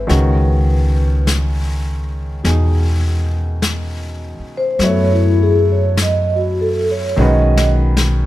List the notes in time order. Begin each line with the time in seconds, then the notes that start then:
Already playing: B4
0.07 C#2 D#3 G#3 C#4 F#4, brush sweep, snare
1.27 brush sweep, snare, hi-hat pedal
2.44 E2 B2 D#4 G#4, brush sweep, snare
3.62 brush sweep, snare, hi-hat pedal
4.39 muted upright bass stroke
4.57 C5
4.79 F#2 F#3 A3 B3, brush sweep, snare
4.83 E4 C#5
5.13 E4
5.43 G#4
5.72 C#5
5.97 brush sweep, snare, hi-hat pedal
6.02 D#5
6.36 F#4
6.61 A4
6.91 C#5
7.16 B1 D#3 G#3 C#4 F#4
7.21 B4 D#5
7.57 snare
7.97 snare